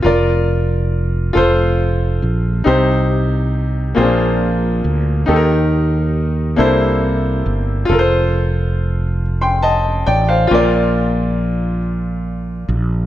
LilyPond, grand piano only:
<<
  \new Staff \with { instrumentName = "Grand piano" } { \time 6/8 \key bes \major \tempo 4. = 46 << { r2. | r2. | r2. | r4. r16 <g'' c'''>16 <ees'' a''>8 <d'' g''>16 <c'' f''>16~ |
<c'' f''>16 r2 r8. | } \\ { <f' bes' d''>4. <f' a' c''>4. | <ees' g' c''>4. <bes c' d' f' aes' c''>4. | <ees' g' a' bes'>4. <bes d' e' a' c''>4. | <f' a' bes' c''>2. |
<f' bes' d''>2. | } >> }
  \new Staff \with { instrumentName = "Grand piano" } { \clef bass \time 6/8 \key bes \major r2. | c4. bes,4. | ees4. c4. | r2. |
bes,4. r4. | }
>>